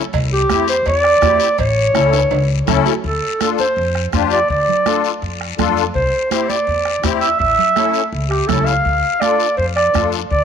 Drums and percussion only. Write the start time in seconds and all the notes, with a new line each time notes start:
0.13 bombo low, cowbell, long guiro
0.49 bombo rim, high conga, short guiro
0.68 short guiro
0.86 cowbell, long guiro
1.04 bombo rim
1.21 bombo low, bombo rim, high conga, low timbale, short guiro
1.40 short guiro
1.58 bombo low, cowbell, long guiro
1.95 bombo rim, high conga, short guiro
2.13 high timbale, short guiro
2.31 cowbell, high timbale, long guiro
2.67 bombo low, bombo rim, high conga, low conga, short guiro
2.86 low timbale, short guiro
3.04 bombo low, long guiro
3.40 bombo rim, high conga, short guiro
3.58 high conga, short guiro
3.76 long guiro
3.95 bombo rim
4.12 bombo low, bombo rim, high conga, short guiro
4.30 short guiro
4.48 bombo low, long guiro
4.68 low conga
4.86 bombo rim, high conga, short guiro
5.04 short guiro
5.22 long guiro
5.41 bombo rim
5.58 bombo low, bombo rim, high conga, low conga, short guiro
5.77 short guiro
5.94 bombo low, long guiro
6.31 bombo rim, high conga, short guiro
6.50 high conga, short guiro
6.67 long guiro
6.85 bombo rim
7.03 bombo low, bombo rim, high conga, short guiro
7.21 short guiro
7.39 bombo low, long guiro
7.58 low conga
7.76 bombo rim, high conga, short guiro
7.94 short guiro
8.12 long guiro
8.31 bombo rim
8.49 bombo low, bombo rim, high conga, low conga, short guiro
8.67 short guiro
8.85 bombo low, long guiro
9.22 bombo rim, high conga, short guiro
9.40 short guiro
9.57 long guiro
9.77 bombo rim
9.94 bombo low, bombo rim, high conga, short guiro
10.12 short guiro
10.31 bombo low, long guiro